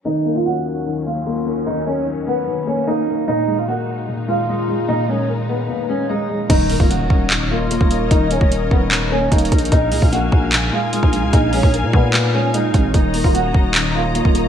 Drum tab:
CC |------------------------------------------------|------------------------------------------------|------------------------------------------------|------------------------------------------------|
HH |------------------------------------------------|------------------------------------------------|------------------------------------------------|------------------------------------------------|
CP |------------------------------------------------|------------------------------------------------|------------------------------------------------|------------------------------------------------|
BD |------------------------------------------------|------------------------------------------------|------------------------------------------------|------------------------------------------------|

CC |x-----------------------------------------------|------------------------------------------------|------------------------------------------------|------------------------------------------------|
HH |x-----o-----x-----------x-----------x-----x-----|x-----x-----x-----------x-----------x-x-x-x-x-x-|x-----o-----x-----------x-----------x-----x-----|x-----o-----x-----------x-----------x-----x-----|
CP |------------------------x-----------------------|------------------------x-----------------------|------------------------x-----------------------|------------------------x-----------------------|
BD |o--------o--------o--------------------o--------|o--------o--------o-----------------o-----o-----|o--------o--------o--------------------o--------|o--------o--------o-----------------------o-----|

CC |------------------------------------------------|
HH |x-----o-----x-----------x-----------x-----x-----|
CP |------------------------x-----------------------|
BD |o--------o--------o--------------------o--------|